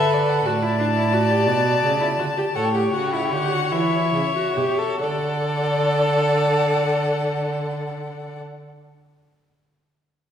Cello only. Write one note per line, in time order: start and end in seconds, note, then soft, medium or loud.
0.00 0.44 D3 medium
0.46 1.49 A2 loud
1.47 1.82 B2 medium
1.82 2.18 C#3 medium
2.18 2.26 D3 medium
2.55 2.92 A2 medium
2.93 3.33 C#3 medium
3.31 3.73 D3 medium
3.72 4.13 E3 medium
4.13 4.21 C#3 medium
4.56 4.64 B2 medium
5.00 8.38 D3 medium